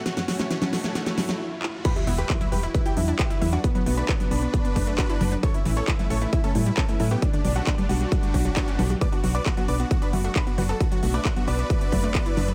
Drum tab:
CC |----------------|x---------------|----------------|----------------|
HH |xxoxxxoxxxox----|xxoxxxoxxxoxxxox|xxoxxxoxxxoxxxox|xxoxxxoxxxoxxxox|
CP |--------------x-|----x-------x---|----x-------x---|----x-------x---|
SD |oooooooooooo----|----------------|----------------|----------------|
CG |-----o----o-----|-----o----o---o-|-----o----o---oo|-----o----o---o-|
BD |----------------|o---o---o---o---|o---o---o-o-o---|o---o---o---o---|

CC |----------------|----------------|----------------|
HH |xxoxxxoxxxoxxxox|xxoxxxoxxxoxxxox|xxoxxxoxxxoxxxox|
CP |----x-------x---|----x-------x---|----x-------x---|
SD |----------------|----------------|----------------|
CG |-----o----o---oo|-----o----o---o-|-----o----o---oo|
BD |o---o---o-o-o---|o---o---o---o---|o---o---o-o-o---|